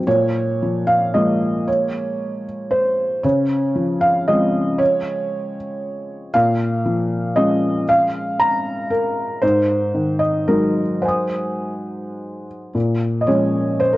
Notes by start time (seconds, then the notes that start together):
0.07 A#2 C#5
0.62 F3
0.87 F5
1.14 F3 G#3 A#3 D#5
1.67 C#5
2.71 C5
3.23 C#3 C#5
3.75 F3
4.01 F5
4.28 F3 G#3 C4 D#5
4.78 C#5
6.34 A#2 F5
6.86 F3
7.36 F3 G#3 C#4 D#5
7.89 F5
8.39 A#5
8.90 A#4
9.42 G#2 C5
9.94 D#3
10.19 D#5
10.48 F#3 G#3 D#4 A#4
11.02 C5 F#5 G#5
11.08 D#6
12.75 A#2
13.21 D#5
13.27 F3 G#3 C#4 C#5
13.80 C5
13.93 A#4